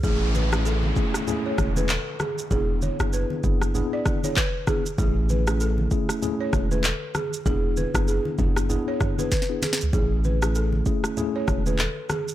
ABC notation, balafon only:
X:1
M:4/4
L:1/16
Q:"Swing 16ths" 1/4=97
K:A
V:1 name="Balafon"
G z B z A2 z3 c z B A z G z | G z c z B2 z3 d z c B z G z | G z B z A2 z3 c z B A z G z | G z B z G2 z3 c z B B z G z |
G z B z A2 z3 c z B A z G z |]